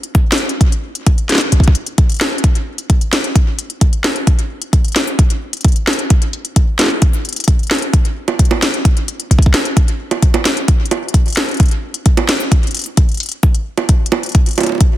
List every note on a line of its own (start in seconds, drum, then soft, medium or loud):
0.03 closed hi-hat soft
0.15 kick loud
0.15 closed hi-hat medium
0.32 snare loud
0.32 closed hi-hat soft
0.38 closed hi-hat medium
0.49 closed hi-hat soft
0.61 kick loud
0.61 closed hi-hat medium
0.72 closed hi-hat soft
0.95 closed hi-hat soft
1.07 kick loud
1.07 closed hi-hat medium
1.18 closed hi-hat soft
1.29 snare medium
1.29 closed hi-hat medium
1.32 snare medium
1.35 snare medium
1.38 snare medium
1.38 closed hi-hat soft
1.52 kick soft
1.52 closed hi-hat medium
1.60 kick medium
1.60 closed hi-hat soft
1.68 kick medium
1.75 closed hi-hat medium
1.86 closed hi-hat soft
1.98 kick loud
1.98 closed hi-hat medium
2.10 closed hi-hat soft
2.12 closed hi-hat soft
2.14 closed hi-hat soft
2.16 closed hi-hat soft
2.19 snare loud
2.19 closed hi-hat soft
2.21 closed hi-hat medium
2.38 closed hi-hat soft
2.44 kick medium
2.44 closed hi-hat medium
2.55 closed hi-hat soft
2.78 closed hi-hat soft
2.90 kick loud
2.90 closed hi-hat medium
3.01 closed hi-hat soft
3.13 snare loud
3.13 closed hi-hat medium
3.24 closed hi-hat soft
3.36 kick loud
3.36 closed hi-hat medium
3.59 closed hi-hat medium
3.70 closed hi-hat soft
3.81 kick loud
3.81 closed hi-hat medium
3.93 closed hi-hat soft
4.04 snare loud
4.04 closed hi-hat medium
4.16 closed hi-hat soft
4.27 kick loud
4.27 closed hi-hat medium
4.39 closed hi-hat soft
4.62 closed hi-hat soft
4.73 kick loud
4.73 closed hi-hat medium
4.85 closed hi-hat soft
4.88 closed hi-hat soft
4.92 snare loud
4.92 closed hi-hat soft
4.96 closed hi-hat medium
5.00 closed hi-hat soft
5.04 closed hi-hat soft
5.07 closed hi-hat soft
5.19 kick medium
5.19 closed hi-hat medium
5.30 closed hi-hat soft
5.53 closed hi-hat medium
5.57 closed hi-hat soft
5.61 closed hi-hat soft
5.64 kick loud
5.64 closed hi-hat medium
5.68 closed hi-hat soft
5.72 closed hi-hat soft
5.76 closed hi-hat soft
5.87 snare loud
5.93 closed hi-hat medium
5.99 closed hi-hat soft
6.10 kick loud
6.10 closed hi-hat medium
6.22 closed hi-hat soft
6.33 closed hi-hat soft
6.45 closed hi-hat soft
6.56 kick loud
6.56 closed hi-hat medium
6.79 snare loud
6.79 closed hi-hat medium
6.81 snare medium
6.84 snare medium
6.86 snare medium
6.88 snare soft
7.02 kick loud
7.02 closed hi-hat medium
7.13 closed hi-hat soft
7.25 closed hi-hat soft
7.29 closed hi-hat soft
7.33 closed hi-hat soft
7.36 closed hi-hat soft
7.40 closed hi-hat soft
7.44 kick loud
7.44 closed hi-hat medium
7.48 closed hi-hat medium
7.59 closed hi-hat soft
7.63 closed hi-hat soft
7.67 snare loud
7.67 closed hi-hat soft
7.71 closed hi-hat soft
7.75 closed hi-hat soft
7.78 closed hi-hat soft
7.82 closed hi-hat soft
7.93 kick loud
7.93 closed hi-hat medium
8.05 closed hi-hat soft
8.28 closed hi-hat soft
8.28 high bongo medium
8.39 kick loud
8.39 closed hi-hat medium
8.45 closed hi-hat soft
8.51 high bongo medium
8.62 snare loud
8.62 closed hi-hat medium
8.74 closed hi-hat soft
8.85 kick loud
8.85 closed hi-hat medium
8.97 closed hi-hat soft
9.08 closed hi-hat medium
9.20 closed hi-hat soft
9.31 kick medium
9.31 closed hi-hat medium
9.39 kick medium
9.39 closed hi-hat soft
9.46 kick medium
9.54 snare loud
9.54 closed hi-hat medium
9.65 closed hi-hat soft
9.77 kick loud
9.77 closed hi-hat medium
9.88 closed hi-hat soft
10.11 closed hi-hat soft
10.11 high bongo medium
10.22 kick loud
10.22 closed hi-hat medium
10.34 closed hi-hat soft
10.34 high bongo medium
10.45 snare loud
10.45 closed hi-hat medium
10.57 closed hi-hat soft
10.68 kick loud
10.68 closed hi-hat medium
10.86 closed hi-hat soft
10.91 closed hi-hat medium
10.91 high bongo medium
11.08 closed hi-hat soft
11.14 kick loud
11.14 closed hi-hat medium
11.26 closed hi-hat soft
11.28 closed hi-hat soft
11.30 closed hi-hat soft
11.33 closed hi-hat soft
11.35 snare loud
11.35 closed hi-hat soft
11.37 closed hi-hat medium
11.49 closed hi-hat soft
11.51 closed hi-hat soft
11.54 closed hi-hat soft
11.57 closed hi-hat soft
11.60 kick loud
11.60 closed hi-hat medium
11.63 closed hi-hat soft
11.66 closed hi-hat soft
11.68 closed hi-hat soft
11.71 closed hi-hat soft
11.94 closed hi-hat soft
12.06 kick loud
12.06 closed hi-hat medium
12.17 closed hi-hat soft
12.17 high bongo medium
12.29 snare loud
12.29 closed hi-hat medium
12.40 closed hi-hat soft
12.52 kick loud
12.52 closed hi-hat medium
12.63 closed hi-hat soft
12.67 closed hi-hat soft
12.71 closed hi-hat soft
12.75 closed hi-hat medium
12.77 closed hi-hat medium
12.79 closed hi-hat soft
12.81 closed hi-hat soft
12.84 closed hi-hat soft
12.86 closed hi-hat soft
12.97 kick loud
12.97 closed hi-hat medium
13.09 closed hi-hat soft
13.12 closed hi-hat soft
13.14 closed hi-hat soft
13.17 closed hi-hat soft
13.20 closed hi-hat medium
13.23 closed hi-hat soft
13.26 closed hi-hat soft
13.29 closed hi-hat soft
13.32 closed hi-hat soft
13.43 kick loud
13.43 closed hi-hat medium
13.55 closed hi-hat soft
13.78 closed hi-hat soft
13.78 high bongo medium
13.89 kick loud
13.89 closed hi-hat medium
14.06 closed hi-hat medium
14.12 high bongo medium
14.23 closed hi-hat soft
14.26 closed hi-hat soft
14.29 closed hi-hat soft
14.32 closed hi-hat soft
14.35 kick loud
14.35 closed hi-hat medium
14.46 closed hi-hat soft
14.49 closed hi-hat soft
14.51 closed hi-hat soft
14.53 closed hi-hat soft
14.55 closed hi-hat soft
14.58 closed hi-hat medium
14.58 high bongo medium
14.60 closed hi-hat medium
14.60 high bongo medium
14.63 closed hi-hat soft
14.63 high bongo soft
14.66 closed hi-hat soft
14.66 high bongo soft
14.69 high bongo soft
14.72 high bongo soft
14.75 high bongo soft
14.78 kick loud
14.78 closed hi-hat medium
14.78 high bongo soft